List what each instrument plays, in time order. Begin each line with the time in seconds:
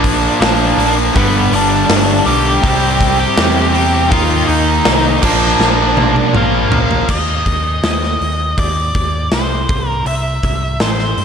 Already playing: picked electric bass A#1, distorted electric guitar A#2 F3 A#3, lead electric guitar D4 D5
0.04 kick, open hi-hat
0.40 picked electric bass A#1, distorted electric guitar A#2 F3 A#3, lead electric guitar D4 D5, snare, open hi-hat
0.78 picked electric bass A#1, overdriven electric guitar A#2 F3 A#3, open hi-hat
1.13 picked electric bass G1, distorted electric guitar G2 D3 G3, lead electric guitar B3 B4, kick, open hi-hat
1.52 picked electric bass G1, lead electric guitar D4 D5, open hi-hat
1.89 picked electric bass G1, snare, open hi-hat
2.25 picked electric bass B1, distorted electric guitar G2 D3 G3, open hi-hat
2.29 lead electric guitar G4 G5
2.62 picked electric bass C2, distorted electric guitar C3 G3 C4, kick, open hi-hat
3.00 kick, open hi-hat
3.19 lead electric guitar G4 G5
3.37 picked electric bass E2, snare, open hi-hat
3.73 distorted electric guitar C3 G3 C4, open hi-hat
4.09 picked electric bass D#2, distorted electric guitar D#3 A#3 D#4, lead electric guitar F4 F5, kick, open hi-hat
4.47 picked electric bass D#2, lead electric guitar D#4 D#5, open hi-hat
4.85 picked electric bass C2, snare, open hi-hat
5.21 picked electric bass A#1, distorted electric guitar A#2 F3 A#3, lead electric guitar D4 D5, kick, crash
5.59 picked electric bass A#1, snare
5.97 high tom
6.16 high tom
6.33 picked electric bass A#1, distorted electric guitar A#2 F3 A#3, lead electric guitar F5, mid tom
6.70 picked electric bass A#1, overdriven electric guitar A#2 F3 A#3, floor tom
6.91 floor tom
7.08 picked electric bass D#2, lead electric guitar D#5, kick, crash
7.46 picked electric bass D#2, kick, open hi-hat
7.83 picked electric bass D#2, lead electric guitar D#5, snare, open hi-hat
8.03 snare
8.21 picked electric bass D#2, open hi-hat
8.57 picked electric bass D#2, lead electric guitar D5, kick, open hi-hat
8.95 picked electric bass D#2, kick, open hi-hat
9.31 picked electric bass C2, lead electric guitar C5, snare, open hi-hat
9.69 picked electric bass C2, kick, open hi-hat
9.90 lead electric guitar A#4
10.05 picked electric bass C2, lead electric guitar E5, open hi-hat
10.43 picked electric bass C2, kick, open hi-hat
10.80 picked electric bass A1, lead electric guitar C5, snare, open hi-hat
10.99 snare
11.17 picked electric bass G2, open hi-hat